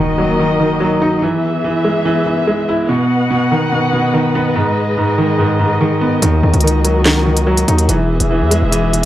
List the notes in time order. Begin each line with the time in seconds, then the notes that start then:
Already playing: D#3 A#3 F#4 D#5, impact
0.18 F#3
0.40 D#3
0.60 D#3
0.80 F#3
1.02 D#4
1.22 E3 B3 G#4 E5
1.64 E3
1.84 G#3
2.05 E3
2.26 E3
2.47 G#3
2.69 E4
2.89 B2 B4 D#5 F#5
3.30 B2
3.52 D#3
3.72 B2
3.93 B2
4.14 D#3
4.35 B3
4.55 G#2 G#3 G#4
4.98 G#2
5.18 D#3
5.39 G#2
5.59 G#2
5.81 D#3
6.01 B3
6.22 D#2 D#3 A#3 F#4, closed hi-hat
6.43 D#2
6.54 C#2, closed hi-hat
6.61 D#3, closed hi-hat
6.67 closed hi-hat
6.85 F#3, closed hi-hat
7.06 D#3, snare, clap
7.26 D#3
7.37 closed hi-hat
7.47 F#3
7.57 closed hi-hat
7.68 D#2 D#4, closed hi-hat
7.78 closed hi-hat
7.89 E1 E3 B3 G#4 E5, closed hi-hat
8.20 E1, closed hi-hat
8.31 E3
8.41 E2
8.51 G#3, closed hi-hat
8.62 E1
8.72 E3, closed hi-hat
8.93 E3, closed hi-hat